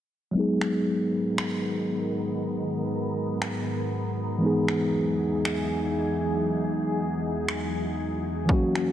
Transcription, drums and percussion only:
0.61 finger snap medium
1.38 finger snap loud
3.42 finger snap loud
4.68 finger snap medium
5.45 finger snap loud
7.49 finger snap loud
8.49 kick loud
8.75 finger snap medium

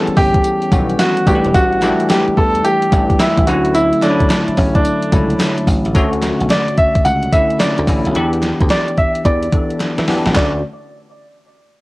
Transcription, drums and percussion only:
0.07 closed hi-hat soft
0.17 kick loud
0.17 open hi-hat medium
0.34 kick loud
0.34 closed hi-hat medium
0.44 closed hi-hat medium
0.44 tambourine medium
0.62 closed hi-hat medium
0.72 kick loud
0.72 closed hi-hat medium
0.72 tambourine medium
0.90 closed hi-hat soft
0.99 snare loud
0.99 clap medium
0.99 closed hi-hat medium
0.99 tambourine loud
1.17 closed hi-hat medium
1.27 kick medium
1.27 closed hi-hat medium
1.27 tambourine medium
1.44 closed hi-hat soft
1.54 kick loud
1.54 closed hi-hat medium
1.54 tambourine medium
1.72 closed hi-hat medium
1.82 snare medium
1.82 clap medium
1.82 closed hi-hat medium
1.82 tambourine medium
2.00 closed hi-hat medium
2.10 snare loud
2.10 clap medium
2.10 closed hi-hat medium
2.10 tambourine medium
2.28 closed hi-hat soft
2.37 kick loud
2.37 open hi-hat medium
2.55 closed hi-hat medium
2.65 closed hi-hat medium
2.65 tambourine medium
2.82 closed hi-hat medium
2.92 kick loud
2.92 closed hi-hat medium
2.92 tambourine medium
3.10 kick medium
3.10 closed hi-hat soft
3.20 snare loud
3.20 clap loud
3.20 closed hi-hat medium
3.20 tambourine loud
3.37 kick loud
3.37 closed hi-hat medium
3.47 closed hi-hat medium
3.47 tambourine medium
3.65 closed hi-hat medium
3.75 closed hi-hat medium
3.75 tambourine medium
3.93 closed hi-hat soft
4.02 snare medium
4.02 clap medium
4.02 closed hi-hat medium
4.02 tambourine medium
4.20 kick loud
4.20 closed hi-hat medium
4.30 snare loud
4.30 clap medium
4.30 closed hi-hat medium
4.30 tambourine loud
4.48 closed hi-hat soft
4.57 kick loud
4.57 open hi-hat medium
4.75 kick loud
4.75 closed hi-hat medium
4.85 closed hi-hat medium
4.85 tambourine medium
5.02 closed hi-hat medium
5.12 kick loud
5.12 closed hi-hat medium
5.12 tambourine medium
5.30 closed hi-hat medium
5.40 snare loud
5.40 clap medium
5.40 closed hi-hat medium
5.40 tambourine loud
5.58 closed hi-hat medium
5.67 kick loud
5.67 open hi-hat medium
5.67 tambourine medium
5.85 closed hi-hat medium
5.95 kick loud
5.95 closed hi-hat medium
5.95 tambourine medium
6.13 closed hi-hat medium
6.22 snare medium
6.22 clap medium
6.22 closed hi-hat medium
6.22 tambourine medium
6.40 closed hi-hat medium
6.50 snare loud
6.50 clap medium
6.50 closed hi-hat medium
6.50 tambourine medium
6.68 closed hi-hat soft
6.78 kick loud
6.78 closed hi-hat medium
6.95 kick loud
6.95 closed hi-hat medium
7.05 closed hi-hat medium
7.05 tambourine medium
7.23 closed hi-hat medium
7.33 kick loud
7.33 closed hi-hat medium
7.33 tambourine medium
7.50 closed hi-hat soft
7.60 snare loud
7.60 clap medium
7.60 closed hi-hat medium
7.60 tambourine loud
7.78 closed hi-hat medium
7.87 kick medium
7.87 open hi-hat medium
7.87 tambourine medium
8.05 closed hi-hat medium
8.15 closed hi-hat medium
8.33 closed hi-hat soft
8.42 snare medium
8.42 clap medium
8.42 closed hi-hat medium
8.61 kick loud
8.61 closed hi-hat medium
8.70 snare loud
8.70 clap medium
8.70 closed hi-hat medium
8.88 closed hi-hat soft
8.98 kick loud
8.98 closed hi-hat medium
9.15 closed hi-hat medium
9.25 kick medium
9.25 closed hi-hat medium
9.43 closed hi-hat medium
9.53 kick loud
9.53 closed hi-hat medium
9.70 closed hi-hat soft
9.80 snare medium
9.80 clap medium
9.80 closed hi-hat medium
9.98 snare medium
9.98 closed hi-hat medium
10.08 snare medium
10.08 open hi-hat medium
10.25 snare medium
10.25 closed hi-hat medium
10.35 kick loud
10.35 snare loud
10.35 clap medium

